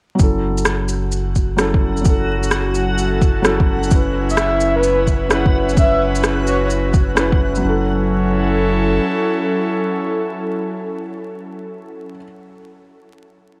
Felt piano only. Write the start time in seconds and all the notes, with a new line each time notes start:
0.15 F#3 C#4
0.20 E4 A4
1.57 F#3 C#4 E4
1.61 A4
2.01 F#3 C#4
2.06 E4 A4
3.42 F#3 C#4 E4
3.46 A4
3.88 C#4
3.92 E4 B4
5.29 C#4 E4
5.33 B4
5.73 C#4 E4
5.81 B4
7.15 C#4 E4
7.19 B4
7.57 F#3 C#4
7.65 E4
7.69 A4